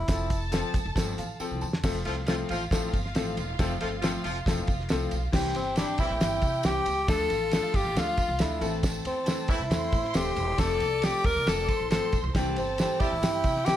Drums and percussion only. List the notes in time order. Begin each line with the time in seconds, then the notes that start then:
0.08 kick, snare, closed hi-hat, tambourine
0.30 kick, closed hi-hat, tambourine
0.52 snare, closed hi-hat, tambourine
0.74 kick, closed hi-hat, tambourine
0.96 kick, snare, closed hi-hat, tambourine
1.18 closed hi-hat, tambourine
1.40 tambourine
1.61 tambourine
1.73 snare
1.84 kick, snare, crash, tambourine
2.05 ride, tambourine
2.27 snare, ride, tambourine
2.49 ride, tambourine
2.71 kick, snare, ride, tambourine
2.94 kick, ride, tambourine
3.06 snare
3.15 snare, ride, tambourine
3.37 ride, tambourine
3.59 kick, snare, ride, tambourine
3.81 ride, tambourine
4.02 snare, ride, tambourine
4.24 ride, tambourine
4.46 kick, snare, ride, tambourine
4.67 kick, ride, tambourine
4.80 snare
4.89 snare, ride, tambourine
5.11 ride, tambourine
5.33 kick, snare, crash, tambourine
5.54 ride, tambourine
5.76 snare, ride, tambourine
5.98 kick, ride, tambourine
6.21 snare, ride, tambourine
6.42 kick, ride, tambourine
6.63 snare, ride, tambourine
6.86 ride, tambourine
7.08 kick, snare, ride, tambourine
7.30 ride, tambourine
7.51 snare, ride, tambourine
7.74 kick, ride, tambourine
7.96 snare, ride, tambourine
8.17 kick, ride, tambourine
8.39 snare, ride, tambourine
8.61 ride, tambourine
8.83 kick, snare, ride, tambourine
9.05 ride, tambourine
9.26 snare, ride, tambourine
9.48 kick, ride, tambourine
9.71 snare, ride, tambourine
9.92 kick, ride, tambourine
10.05 snare
10.14 snare, ride, tambourine
10.36 ride, tambourine
10.58 kick, snare, ride, tambourine
10.80 ride, tambourine
11.02 snare, ride, tambourine
11.24 kick, ride, tambourine
11.47 snare, ride, tambourine
11.69 kick, ride, tambourine
11.90 snare, ride, tambourine
12.12 kick, ride, tambourine
12.35 kick, snare, ride, tambourine
12.56 ride, tambourine
12.78 snare, ride, tambourine
13.00 kick, ride, tambourine
13.23 snare, ride, tambourine
13.44 kick, ride, tambourine
13.57 snare
13.66 snare, ride, tambourine